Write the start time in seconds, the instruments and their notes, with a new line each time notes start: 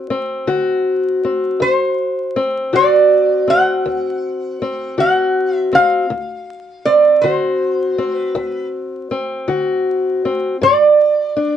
Already playing: steel-string acoustic guitar F#4
0.10 steel-string acoustic guitar C4
0.47 steel-string acoustic guitar D3 F#4
1.24 steel-string acoustic guitar C4
1.60 steel-string acoustic guitar D2, resonator guitar played with a steel bar C5
2.36 steel-string acoustic guitar C4
2.73 steel-string acoustic guitar D3 F#4, resonator guitar played with a steel bar D5
3.48 steel-string acoustic guitar C4, resonator guitar played with a steel bar F#5
3.86 steel-string acoustic guitar D2
4.62 steel-string acoustic guitar C4
4.98 steel-string acoustic guitar D3 F#4, resonator guitar played with a steel bar F#5
5.56 resonator guitar played with a steel bar E5
5.73 steel-string acoustic guitar C4, resonator guitar played with a steel bar F5
6.10 steel-string acoustic guitar D2
6.85 steel-string acoustic guitar C4, resonator guitar played with a steel bar D5
7.21 steel-string acoustic guitar D3 F#4, resonator guitar played with a steel bar C5
7.98 steel-string acoustic guitar C4
8.15 resonator guitar played with a steel bar B4
8.35 steel-string acoustic guitar D2
9.11 steel-string acoustic guitar C4
9.48 steel-string acoustic guitar D3 F#4
10.25 steel-string acoustic guitar C4
10.61 steel-string acoustic guitar G2, resonator guitar played with a steel bar D5
11.37 steel-string acoustic guitar D4